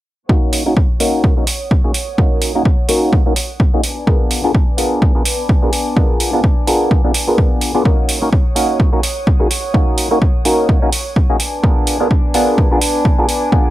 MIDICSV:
0, 0, Header, 1, 4, 480
1, 0, Start_track
1, 0, Key_signature, -6, "minor"
1, 0, Tempo, 472441
1, 300, Time_signature, 4, 2, 24, 8
1, 13922, End_track
2, 0, Start_track
2, 0, Title_t, "Violin section"
2, 0, Program_c, 0, 48
2, 297, Note_on_c, 0, 78, 68
2, 298, Note_on_c, 0, 73, 74
2, 301, Note_on_c, 0, 87, 83
2, 3863, Note_off_c, 0, 73, 0
2, 3863, Note_off_c, 0, 78, 0
2, 3864, Note_off_c, 0, 87, 0
2, 3898, Note_on_c, 0, 59, 71
2, 3901, Note_on_c, 0, 62, 76
2, 3902, Note_on_c, 0, 80, 67
2, 3904, Note_on_c, 0, 86, 88
2, 7938, Note_off_c, 0, 59, 0
2, 7940, Note_off_c, 0, 62, 0
2, 7940, Note_off_c, 0, 80, 0
2, 7941, Note_off_c, 0, 86, 0
2, 7976, Note_on_c, 0, 78, 68
2, 7979, Note_on_c, 0, 73, 76
2, 7979, Note_on_c, 0, 87, 87
2, 11542, Note_off_c, 0, 78, 0
2, 11543, Note_off_c, 0, 73, 0
2, 11543, Note_off_c, 0, 87, 0
2, 11576, Note_on_c, 0, 59, 73
2, 11577, Note_on_c, 0, 86, 86
2, 11578, Note_on_c, 0, 62, 81
2, 11580, Note_on_c, 0, 80, 72
2, 13922, Note_off_c, 0, 59, 0
2, 13922, Note_off_c, 0, 62, 0
2, 13922, Note_off_c, 0, 80, 0
2, 13922, Note_off_c, 0, 86, 0
2, 13922, End_track
3, 0, Start_track
3, 0, Title_t, "Clav"
3, 0, Program_c, 1, 7
3, 294, Note_on_c, 1, 58, 65
3, 294, Note_on_c, 1, 61, 59
3, 297, Note_on_c, 1, 63, 59
3, 301, Note_on_c, 1, 66, 58
3, 304, Note_on_c, 1, 70, 71
3, 641, Note_off_c, 1, 58, 0
3, 641, Note_off_c, 1, 61, 0
3, 642, Note_off_c, 1, 63, 0
3, 644, Note_off_c, 1, 66, 0
3, 646, Note_off_c, 1, 70, 0
3, 669, Note_on_c, 1, 58, 72
3, 672, Note_on_c, 1, 61, 65
3, 674, Note_on_c, 1, 63, 66
3, 677, Note_on_c, 1, 66, 63
3, 677, Note_on_c, 1, 70, 78
3, 743, Note_off_c, 1, 58, 0
3, 745, Note_off_c, 1, 61, 0
3, 746, Note_off_c, 1, 63, 0
3, 747, Note_off_c, 1, 66, 0
3, 747, Note_off_c, 1, 70, 0
3, 1015, Note_on_c, 1, 58, 82
3, 1017, Note_on_c, 1, 61, 76
3, 1018, Note_on_c, 1, 63, 73
3, 1021, Note_on_c, 1, 66, 76
3, 1022, Note_on_c, 1, 70, 91
3, 1361, Note_off_c, 1, 58, 0
3, 1362, Note_off_c, 1, 61, 0
3, 1363, Note_off_c, 1, 63, 0
3, 1364, Note_off_c, 1, 66, 0
3, 1365, Note_off_c, 1, 70, 0
3, 1391, Note_on_c, 1, 58, 83
3, 1394, Note_on_c, 1, 61, 74
3, 1396, Note_on_c, 1, 63, 73
3, 1397, Note_on_c, 1, 66, 70
3, 1399, Note_on_c, 1, 70, 89
3, 1464, Note_off_c, 1, 58, 0
3, 1466, Note_off_c, 1, 61, 0
3, 1466, Note_off_c, 1, 63, 0
3, 1467, Note_off_c, 1, 66, 0
3, 1468, Note_off_c, 1, 70, 0
3, 1870, Note_on_c, 1, 58, 82
3, 1871, Note_on_c, 1, 61, 72
3, 1874, Note_on_c, 1, 63, 72
3, 1876, Note_on_c, 1, 66, 76
3, 1879, Note_on_c, 1, 68, 89
3, 1944, Note_off_c, 1, 58, 0
3, 1944, Note_off_c, 1, 61, 0
3, 1945, Note_off_c, 1, 63, 0
3, 1947, Note_off_c, 1, 66, 0
3, 1948, Note_off_c, 1, 68, 0
3, 2214, Note_on_c, 1, 58, 64
3, 2217, Note_on_c, 1, 61, 60
3, 2218, Note_on_c, 1, 63, 61
3, 2220, Note_on_c, 1, 66, 58
3, 2223, Note_on_c, 1, 70, 72
3, 2561, Note_off_c, 1, 58, 0
3, 2562, Note_off_c, 1, 61, 0
3, 2563, Note_off_c, 1, 63, 0
3, 2564, Note_off_c, 1, 66, 0
3, 2565, Note_off_c, 1, 70, 0
3, 2592, Note_on_c, 1, 58, 74
3, 2594, Note_on_c, 1, 61, 69
3, 2596, Note_on_c, 1, 63, 64
3, 2597, Note_on_c, 1, 66, 68
3, 2600, Note_on_c, 1, 70, 82
3, 2664, Note_off_c, 1, 58, 0
3, 2665, Note_off_c, 1, 61, 0
3, 2667, Note_off_c, 1, 63, 0
3, 2667, Note_off_c, 1, 66, 0
3, 2668, Note_off_c, 1, 70, 0
3, 2931, Note_on_c, 1, 58, 83
3, 2933, Note_on_c, 1, 61, 71
3, 2937, Note_on_c, 1, 63, 77
3, 2938, Note_on_c, 1, 66, 76
3, 2939, Note_on_c, 1, 70, 93
3, 3279, Note_off_c, 1, 58, 0
3, 3280, Note_off_c, 1, 61, 0
3, 3282, Note_off_c, 1, 63, 0
3, 3283, Note_off_c, 1, 66, 0
3, 3283, Note_off_c, 1, 70, 0
3, 3312, Note_on_c, 1, 58, 85
3, 3314, Note_on_c, 1, 61, 74
3, 3317, Note_on_c, 1, 63, 72
3, 3319, Note_on_c, 1, 66, 71
3, 3322, Note_on_c, 1, 70, 91
3, 3384, Note_off_c, 1, 58, 0
3, 3386, Note_off_c, 1, 61, 0
3, 3387, Note_off_c, 1, 63, 0
3, 3388, Note_off_c, 1, 66, 0
3, 3390, Note_off_c, 1, 70, 0
3, 3796, Note_on_c, 1, 58, 80
3, 3799, Note_on_c, 1, 61, 74
3, 3800, Note_on_c, 1, 63, 78
3, 3802, Note_on_c, 1, 66, 73
3, 3804, Note_on_c, 1, 68, 92
3, 3866, Note_off_c, 1, 58, 0
3, 3868, Note_off_c, 1, 61, 0
3, 3868, Note_off_c, 1, 63, 0
3, 3870, Note_off_c, 1, 66, 0
3, 3870, Note_off_c, 1, 68, 0
3, 4134, Note_on_c, 1, 59, 63
3, 4136, Note_on_c, 1, 62, 62
3, 4137, Note_on_c, 1, 65, 60
3, 4140, Note_on_c, 1, 68, 60
3, 4143, Note_on_c, 1, 70, 74
3, 4481, Note_off_c, 1, 59, 0
3, 4482, Note_off_c, 1, 62, 0
3, 4482, Note_off_c, 1, 65, 0
3, 4484, Note_off_c, 1, 68, 0
3, 4485, Note_off_c, 1, 70, 0
3, 4510, Note_on_c, 1, 59, 71
3, 4511, Note_on_c, 1, 62, 65
3, 4513, Note_on_c, 1, 65, 67
3, 4514, Note_on_c, 1, 68, 67
3, 4518, Note_on_c, 1, 70, 77
3, 4583, Note_off_c, 1, 59, 0
3, 4584, Note_off_c, 1, 62, 0
3, 4585, Note_off_c, 1, 65, 0
3, 4586, Note_off_c, 1, 68, 0
3, 4588, Note_off_c, 1, 70, 0
3, 4850, Note_on_c, 1, 59, 83
3, 4853, Note_on_c, 1, 62, 77
3, 4854, Note_on_c, 1, 65, 73
3, 4856, Note_on_c, 1, 68, 74
3, 4857, Note_on_c, 1, 70, 87
3, 5199, Note_off_c, 1, 59, 0
3, 5200, Note_off_c, 1, 62, 0
3, 5201, Note_off_c, 1, 65, 0
3, 5202, Note_off_c, 1, 68, 0
3, 5203, Note_off_c, 1, 70, 0
3, 5233, Note_on_c, 1, 59, 80
3, 5235, Note_on_c, 1, 62, 73
3, 5235, Note_on_c, 1, 65, 77
3, 5238, Note_on_c, 1, 68, 71
3, 5240, Note_on_c, 1, 70, 86
3, 5305, Note_off_c, 1, 59, 0
3, 5306, Note_off_c, 1, 62, 0
3, 5306, Note_off_c, 1, 65, 0
3, 5308, Note_off_c, 1, 68, 0
3, 5308, Note_off_c, 1, 70, 0
3, 5713, Note_on_c, 1, 59, 81
3, 5716, Note_on_c, 1, 62, 71
3, 5716, Note_on_c, 1, 65, 75
3, 5720, Note_on_c, 1, 68, 73
3, 5722, Note_on_c, 1, 70, 91
3, 5785, Note_off_c, 1, 59, 0
3, 5786, Note_off_c, 1, 65, 0
3, 5787, Note_off_c, 1, 62, 0
3, 5788, Note_off_c, 1, 68, 0
3, 5789, Note_off_c, 1, 70, 0
3, 6057, Note_on_c, 1, 59, 69
3, 6058, Note_on_c, 1, 62, 63
3, 6062, Note_on_c, 1, 65, 61
3, 6062, Note_on_c, 1, 68, 60
3, 6066, Note_on_c, 1, 70, 75
3, 6402, Note_off_c, 1, 59, 0
3, 6403, Note_off_c, 1, 62, 0
3, 6405, Note_off_c, 1, 65, 0
3, 6405, Note_off_c, 1, 68, 0
3, 6407, Note_off_c, 1, 70, 0
3, 6432, Note_on_c, 1, 59, 74
3, 6435, Note_on_c, 1, 62, 67
3, 6435, Note_on_c, 1, 65, 70
3, 6437, Note_on_c, 1, 68, 63
3, 6441, Note_on_c, 1, 70, 80
3, 6505, Note_off_c, 1, 59, 0
3, 6506, Note_off_c, 1, 62, 0
3, 6506, Note_off_c, 1, 65, 0
3, 6507, Note_off_c, 1, 68, 0
3, 6509, Note_off_c, 1, 70, 0
3, 6778, Note_on_c, 1, 59, 77
3, 6779, Note_on_c, 1, 62, 72
3, 6781, Note_on_c, 1, 65, 76
3, 6784, Note_on_c, 1, 68, 78
3, 6786, Note_on_c, 1, 70, 93
3, 7123, Note_off_c, 1, 59, 0
3, 7123, Note_off_c, 1, 62, 0
3, 7124, Note_off_c, 1, 65, 0
3, 7126, Note_off_c, 1, 68, 0
3, 7127, Note_off_c, 1, 70, 0
3, 7156, Note_on_c, 1, 59, 81
3, 7156, Note_on_c, 1, 62, 74
3, 7157, Note_on_c, 1, 65, 72
3, 7161, Note_on_c, 1, 68, 72
3, 7163, Note_on_c, 1, 70, 89
3, 7226, Note_off_c, 1, 59, 0
3, 7227, Note_off_c, 1, 62, 0
3, 7227, Note_off_c, 1, 65, 0
3, 7229, Note_off_c, 1, 68, 0
3, 7230, Note_off_c, 1, 70, 0
3, 7392, Note_on_c, 1, 59, 71
3, 7395, Note_on_c, 1, 62, 64
3, 7395, Note_on_c, 1, 65, 65
3, 7399, Note_on_c, 1, 68, 64
3, 7400, Note_on_c, 1, 70, 76
3, 7841, Note_off_c, 1, 59, 0
3, 7843, Note_off_c, 1, 62, 0
3, 7843, Note_off_c, 1, 65, 0
3, 7845, Note_off_c, 1, 68, 0
3, 7845, Note_off_c, 1, 70, 0
3, 7870, Note_on_c, 1, 59, 88
3, 7871, Note_on_c, 1, 62, 77
3, 7875, Note_on_c, 1, 65, 82
3, 7875, Note_on_c, 1, 68, 76
3, 7878, Note_on_c, 1, 74, 98
3, 7951, Note_off_c, 1, 59, 0
3, 7952, Note_off_c, 1, 62, 0
3, 7954, Note_off_c, 1, 65, 0
3, 7954, Note_off_c, 1, 68, 0
3, 7955, Note_off_c, 1, 74, 0
3, 8348, Note_on_c, 1, 58, 72
3, 8353, Note_on_c, 1, 61, 65
3, 8354, Note_on_c, 1, 63, 67
3, 8355, Note_on_c, 1, 66, 66
3, 8358, Note_on_c, 1, 70, 78
3, 8422, Note_off_c, 1, 58, 0
3, 8425, Note_off_c, 1, 61, 0
3, 8425, Note_off_c, 1, 63, 0
3, 8426, Note_off_c, 1, 66, 0
3, 8428, Note_off_c, 1, 70, 0
3, 8691, Note_on_c, 1, 58, 81
3, 8692, Note_on_c, 1, 61, 76
3, 8694, Note_on_c, 1, 63, 74
3, 8696, Note_on_c, 1, 66, 77
3, 8699, Note_on_c, 1, 70, 91
3, 9039, Note_off_c, 1, 58, 0
3, 9040, Note_off_c, 1, 61, 0
3, 9041, Note_off_c, 1, 63, 0
3, 9042, Note_off_c, 1, 66, 0
3, 9043, Note_off_c, 1, 70, 0
3, 9066, Note_on_c, 1, 58, 82
3, 9068, Note_on_c, 1, 61, 77
3, 9071, Note_on_c, 1, 63, 75
3, 9073, Note_on_c, 1, 66, 76
3, 9076, Note_on_c, 1, 70, 87
3, 9142, Note_off_c, 1, 58, 0
3, 9143, Note_off_c, 1, 61, 0
3, 9144, Note_off_c, 1, 63, 0
3, 9145, Note_off_c, 1, 66, 0
3, 9146, Note_off_c, 1, 70, 0
3, 9545, Note_on_c, 1, 58, 81
3, 9549, Note_on_c, 1, 61, 77
3, 9550, Note_on_c, 1, 63, 74
3, 9555, Note_on_c, 1, 66, 73
3, 9556, Note_on_c, 1, 68, 90
3, 9621, Note_off_c, 1, 58, 0
3, 9623, Note_off_c, 1, 61, 0
3, 9624, Note_off_c, 1, 63, 0
3, 9626, Note_off_c, 1, 66, 0
3, 9626, Note_off_c, 1, 68, 0
3, 9891, Note_on_c, 1, 58, 67
3, 9892, Note_on_c, 1, 61, 61
3, 9896, Note_on_c, 1, 63, 61
3, 9897, Note_on_c, 1, 66, 57
3, 9897, Note_on_c, 1, 70, 77
3, 10239, Note_off_c, 1, 58, 0
3, 10240, Note_off_c, 1, 61, 0
3, 10241, Note_off_c, 1, 63, 0
3, 10242, Note_off_c, 1, 66, 0
3, 10242, Note_off_c, 1, 70, 0
3, 10271, Note_on_c, 1, 58, 73
3, 10274, Note_on_c, 1, 61, 68
3, 10274, Note_on_c, 1, 63, 68
3, 10277, Note_on_c, 1, 66, 63
3, 10278, Note_on_c, 1, 70, 84
3, 10344, Note_off_c, 1, 58, 0
3, 10345, Note_off_c, 1, 63, 0
3, 10346, Note_off_c, 1, 61, 0
3, 10347, Note_off_c, 1, 66, 0
3, 10347, Note_off_c, 1, 70, 0
3, 10618, Note_on_c, 1, 58, 88
3, 10618, Note_on_c, 1, 61, 77
3, 10623, Note_on_c, 1, 63, 77
3, 10624, Note_on_c, 1, 66, 73
3, 10625, Note_on_c, 1, 70, 89
3, 10963, Note_off_c, 1, 58, 0
3, 10963, Note_off_c, 1, 61, 0
3, 10965, Note_off_c, 1, 63, 0
3, 10966, Note_off_c, 1, 66, 0
3, 10966, Note_off_c, 1, 70, 0
3, 10993, Note_on_c, 1, 58, 79
3, 10995, Note_on_c, 1, 61, 76
3, 10998, Note_on_c, 1, 63, 71
3, 11000, Note_on_c, 1, 66, 77
3, 11002, Note_on_c, 1, 70, 91
3, 11065, Note_off_c, 1, 58, 0
3, 11066, Note_off_c, 1, 61, 0
3, 11067, Note_off_c, 1, 63, 0
3, 11068, Note_off_c, 1, 66, 0
3, 11070, Note_off_c, 1, 70, 0
3, 11475, Note_on_c, 1, 58, 80
3, 11476, Note_on_c, 1, 61, 79
3, 11477, Note_on_c, 1, 63, 73
3, 11480, Note_on_c, 1, 66, 78
3, 11480, Note_on_c, 1, 68, 95
3, 11546, Note_off_c, 1, 58, 0
3, 11546, Note_off_c, 1, 61, 0
3, 11547, Note_off_c, 1, 63, 0
3, 11548, Note_off_c, 1, 66, 0
3, 11549, Note_off_c, 1, 68, 0
3, 11816, Note_on_c, 1, 59, 67
3, 11818, Note_on_c, 1, 62, 62
3, 11819, Note_on_c, 1, 65, 62
3, 11822, Note_on_c, 1, 68, 62
3, 11823, Note_on_c, 1, 70, 75
3, 12162, Note_off_c, 1, 59, 0
3, 12163, Note_off_c, 1, 62, 0
3, 12163, Note_off_c, 1, 65, 0
3, 12165, Note_off_c, 1, 68, 0
3, 12165, Note_off_c, 1, 70, 0
3, 12194, Note_on_c, 1, 59, 74
3, 12197, Note_on_c, 1, 62, 65
3, 12197, Note_on_c, 1, 65, 68
3, 12202, Note_on_c, 1, 68, 68
3, 12203, Note_on_c, 1, 70, 82
3, 12265, Note_off_c, 1, 59, 0
3, 12267, Note_off_c, 1, 62, 0
3, 12267, Note_off_c, 1, 65, 0
3, 12270, Note_off_c, 1, 68, 0
3, 12270, Note_off_c, 1, 70, 0
3, 12541, Note_on_c, 1, 59, 85
3, 12543, Note_on_c, 1, 62, 80
3, 12545, Note_on_c, 1, 65, 81
3, 12547, Note_on_c, 1, 68, 75
3, 12549, Note_on_c, 1, 70, 93
3, 12884, Note_off_c, 1, 59, 0
3, 12885, Note_off_c, 1, 62, 0
3, 12886, Note_off_c, 1, 65, 0
3, 12887, Note_off_c, 1, 68, 0
3, 12888, Note_off_c, 1, 70, 0
3, 12916, Note_on_c, 1, 59, 78
3, 12920, Note_on_c, 1, 62, 76
3, 12922, Note_on_c, 1, 65, 73
3, 12924, Note_on_c, 1, 68, 76
3, 12924, Note_on_c, 1, 70, 91
3, 12987, Note_off_c, 1, 59, 0
3, 12988, Note_off_c, 1, 62, 0
3, 12990, Note_off_c, 1, 65, 0
3, 12990, Note_off_c, 1, 68, 0
3, 12991, Note_off_c, 1, 70, 0
3, 13396, Note_on_c, 1, 59, 82
3, 13397, Note_on_c, 1, 62, 76
3, 13400, Note_on_c, 1, 65, 74
3, 13402, Note_on_c, 1, 70, 91
3, 13403, Note_on_c, 1, 68, 75
3, 13466, Note_off_c, 1, 59, 0
3, 13467, Note_off_c, 1, 62, 0
3, 13468, Note_off_c, 1, 65, 0
3, 13470, Note_off_c, 1, 68, 0
3, 13470, Note_off_c, 1, 70, 0
3, 13737, Note_on_c, 1, 59, 67
3, 13738, Note_on_c, 1, 62, 62
3, 13742, Note_on_c, 1, 65, 60
3, 13743, Note_on_c, 1, 68, 64
3, 13745, Note_on_c, 1, 70, 72
3, 13922, Note_off_c, 1, 59, 0
3, 13922, Note_off_c, 1, 62, 0
3, 13922, Note_off_c, 1, 65, 0
3, 13922, Note_off_c, 1, 68, 0
3, 13922, Note_off_c, 1, 70, 0
3, 13922, End_track
4, 0, Start_track
4, 0, Title_t, "Drums"
4, 298, Note_on_c, 9, 36, 109
4, 400, Note_off_c, 9, 36, 0
4, 536, Note_on_c, 9, 46, 96
4, 638, Note_off_c, 9, 46, 0
4, 779, Note_on_c, 9, 36, 109
4, 880, Note_off_c, 9, 36, 0
4, 1017, Note_on_c, 9, 46, 81
4, 1119, Note_off_c, 9, 46, 0
4, 1258, Note_on_c, 9, 36, 109
4, 1360, Note_off_c, 9, 36, 0
4, 1494, Note_on_c, 9, 46, 101
4, 1596, Note_off_c, 9, 46, 0
4, 1738, Note_on_c, 9, 36, 109
4, 1840, Note_off_c, 9, 36, 0
4, 1975, Note_on_c, 9, 46, 85
4, 2077, Note_off_c, 9, 46, 0
4, 2218, Note_on_c, 9, 36, 113
4, 2319, Note_off_c, 9, 36, 0
4, 2455, Note_on_c, 9, 46, 97
4, 2556, Note_off_c, 9, 46, 0
4, 2697, Note_on_c, 9, 36, 114
4, 2798, Note_off_c, 9, 36, 0
4, 2933, Note_on_c, 9, 46, 87
4, 3034, Note_off_c, 9, 46, 0
4, 3177, Note_on_c, 9, 36, 115
4, 3278, Note_off_c, 9, 36, 0
4, 3416, Note_on_c, 9, 46, 105
4, 3517, Note_off_c, 9, 46, 0
4, 3656, Note_on_c, 9, 36, 114
4, 3758, Note_off_c, 9, 36, 0
4, 3897, Note_on_c, 9, 46, 90
4, 3998, Note_off_c, 9, 46, 0
4, 4138, Note_on_c, 9, 36, 117
4, 4239, Note_off_c, 9, 36, 0
4, 4376, Note_on_c, 9, 46, 98
4, 4478, Note_off_c, 9, 46, 0
4, 4618, Note_on_c, 9, 36, 113
4, 4720, Note_off_c, 9, 36, 0
4, 4857, Note_on_c, 9, 46, 85
4, 4959, Note_off_c, 9, 46, 0
4, 5100, Note_on_c, 9, 36, 113
4, 5202, Note_off_c, 9, 36, 0
4, 5339, Note_on_c, 9, 46, 106
4, 5440, Note_off_c, 9, 46, 0
4, 5581, Note_on_c, 9, 36, 113
4, 5682, Note_off_c, 9, 36, 0
4, 5819, Note_on_c, 9, 46, 88
4, 5921, Note_off_c, 9, 46, 0
4, 6061, Note_on_c, 9, 36, 120
4, 6163, Note_off_c, 9, 36, 0
4, 6300, Note_on_c, 9, 46, 96
4, 6402, Note_off_c, 9, 46, 0
4, 6541, Note_on_c, 9, 36, 111
4, 6642, Note_off_c, 9, 36, 0
4, 6781, Note_on_c, 9, 46, 84
4, 6883, Note_off_c, 9, 46, 0
4, 7020, Note_on_c, 9, 36, 114
4, 7122, Note_off_c, 9, 36, 0
4, 7258, Note_on_c, 9, 46, 106
4, 7360, Note_off_c, 9, 46, 0
4, 7499, Note_on_c, 9, 36, 111
4, 7601, Note_off_c, 9, 36, 0
4, 7736, Note_on_c, 9, 46, 89
4, 7837, Note_off_c, 9, 46, 0
4, 7980, Note_on_c, 9, 36, 112
4, 8081, Note_off_c, 9, 36, 0
4, 8217, Note_on_c, 9, 46, 91
4, 8319, Note_off_c, 9, 46, 0
4, 8459, Note_on_c, 9, 36, 107
4, 8561, Note_off_c, 9, 36, 0
4, 8698, Note_on_c, 9, 46, 85
4, 8800, Note_off_c, 9, 46, 0
4, 8938, Note_on_c, 9, 36, 105
4, 9040, Note_off_c, 9, 36, 0
4, 9179, Note_on_c, 9, 46, 98
4, 9280, Note_off_c, 9, 46, 0
4, 9419, Note_on_c, 9, 36, 114
4, 9521, Note_off_c, 9, 36, 0
4, 9659, Note_on_c, 9, 46, 88
4, 9761, Note_off_c, 9, 46, 0
4, 9899, Note_on_c, 9, 36, 105
4, 10001, Note_off_c, 9, 36, 0
4, 10137, Note_on_c, 9, 46, 94
4, 10238, Note_off_c, 9, 46, 0
4, 10380, Note_on_c, 9, 36, 103
4, 10482, Note_off_c, 9, 36, 0
4, 10619, Note_on_c, 9, 46, 86
4, 10720, Note_off_c, 9, 46, 0
4, 10860, Note_on_c, 9, 36, 106
4, 10962, Note_off_c, 9, 36, 0
4, 11100, Note_on_c, 9, 46, 97
4, 11202, Note_off_c, 9, 46, 0
4, 11341, Note_on_c, 9, 36, 104
4, 11443, Note_off_c, 9, 36, 0
4, 11580, Note_on_c, 9, 46, 84
4, 11681, Note_off_c, 9, 46, 0
4, 11822, Note_on_c, 9, 36, 111
4, 11923, Note_off_c, 9, 36, 0
4, 12060, Note_on_c, 9, 46, 94
4, 12162, Note_off_c, 9, 46, 0
4, 12301, Note_on_c, 9, 36, 99
4, 12403, Note_off_c, 9, 36, 0
4, 12539, Note_on_c, 9, 46, 82
4, 12641, Note_off_c, 9, 46, 0
4, 12781, Note_on_c, 9, 36, 99
4, 12883, Note_off_c, 9, 36, 0
4, 13020, Note_on_c, 9, 46, 98
4, 13121, Note_off_c, 9, 46, 0
4, 13260, Note_on_c, 9, 36, 100
4, 13362, Note_off_c, 9, 36, 0
4, 13499, Note_on_c, 9, 46, 86
4, 13601, Note_off_c, 9, 46, 0
4, 13739, Note_on_c, 9, 36, 115
4, 13841, Note_off_c, 9, 36, 0
4, 13922, End_track
0, 0, End_of_file